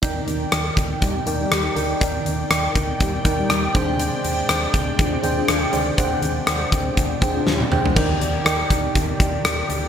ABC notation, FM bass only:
X:1
M:4/4
L:1/8
Q:"Swing 16ths" 1/4=121
K:Eb
V:1 name="FM bass" clef=bass
E,, E,, E,, D,, E,, E,, E,, D,, | E,, E,, E,, D,, E,, E,, E,, E,,- | E,, E,, E,, D,, E,, E,, E,, D,, | E,, E,, E,, D,, E,, E,, E,, D,, |
E,, E,, E,, D,, E,, E,, E,, D,, |]